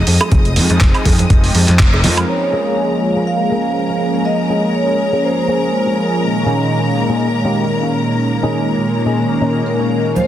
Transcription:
Already playing: G#4 D#5 D#6
0.07 F2, open hi-hat
0.20 F3 G#3 C4 D#4 G#4, closed hi-hat, high bongo, high woodblock
0.32 F1, kick, closed hi-hat, high conga, low conga
0.45 closed hi-hat
0.56 F2 F3 G#3 C4 D#4 G#4, open hi-hat
0.70 F2, closed hi-hat, high bongo
0.81 F1, kick, clap, closed hi-hat
0.94 F3 G#3 C4 D#4 G#4, closed hi-hat, high woodblock
1.05 F2, kick, open hi-hat, high bongo
1.19 closed hi-hat, high conga
1.30 F1 F3 G#3 C4 D#4 G4, kick, closed hi-hat
1.44 open hi-hat
1.55 F2, open hi-hat, high bongo
1.68 F2, clap, closed hi-hat
1.79 F1, kick, clap, closed hi-hat
1.93 F3 G#3 C4 D#4 A#4, high bongo
2.04 F2, open hi-hat, high conga
2.17 closed hi-hat, high woodblock
2.28 F3 G#3 A#3 C#4 G#4 A#4 C#5 A#5
2.53 A#3 C#4 G#4
3.15 A#3 C#4 G#4
3.27 F5
3.51 A#3 C#4 G#4
3.90 muted clean electric guitar stroke
4.00 muted clean electric guitar stroke
4.25 D#5
4.50 A#3 C#4 G#4
4.75 C#5
5.12 A#3 C#4 G#4
5.24 C5
5.48 A#3 C#4 G#4
5.86 muted clean electric guitar stroke
5.97 muted clean electric guitar stroke
6.21 A#2 D#3 G#3 A#3 C#4
6.46 A#2 C#4 D#4 G#4
7.09 A#2 C#4 D#4 G#4
7.44 A#2 C#4 D#4 G4
7.83 muted clean electric guitar stroke
7.94 muted clean electric guitar stroke
8.43 A#2 C#4 D#4 G#4
9.06 A#2 C#4 D#4 G#4
9.41 A#2 C#4 D#4 A#4
9.66 A#4
9.79 muted clean electric guitar stroke
9.90 muted clean electric guitar stroke
10.14 F3 G#3 C4 D#4 F4 C5 F5, high conga, cabasa

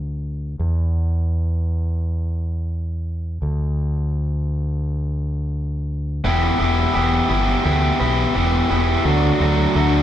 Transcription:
Already playing: D2
0.59 E2
3.42 D2
6.24 E1 E3 B3 E4 G4
6.59 E1 E3 B3 E4 G4
6.94 E1 E3 B3 E4 G4
7.29 G1 E3 B3 E4 G4
7.64 D2 E3 B3 E4 G4
8.00 B1 E3 B3 E4 G4
8.35 E1 E3 B3 E4 G4
8.70 E1 E3 B3 E4 G4
9.05 D2 D3 F#3 A3 D4 F#4
9.40 D2 D3 F#3 A3 D4 F#4
9.75 D2 D3 F#3 A3 D4 F#4

